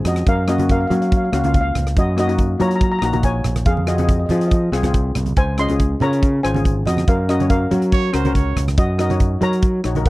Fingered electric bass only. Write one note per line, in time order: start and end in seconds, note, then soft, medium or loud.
0.05 0.24 F2 medium
0.27 0.84 F#2 medium
0.90 1.28 F#3 loud
1.32 1.71 C#2 loud
1.75 1.94 C#2 medium
1.97 2.54 F#2 medium
2.60 2.98 F#3 loud
3.02 3.40 A#1 medium
3.44 3.64 A#1 medium
3.66 4.24 F2 loud
4.30 4.69 F3 loud
4.72 5.11 C2 loud
5.16 5.35 C2 medium
5.37 5.94 C#2 medium
6.01 6.39 C#3 loud
6.45 6.82 G#1 medium
6.87 7.06 F2 medium
7.08 7.65 F#2 loud
7.71 8.10 F#3 loud
8.14 8.52 C#2 loud
8.56 8.76 C#2 medium
8.78 9.35 F#2 loud
9.41 9.80 F#3 loud
9.85 10.09 A#1 medium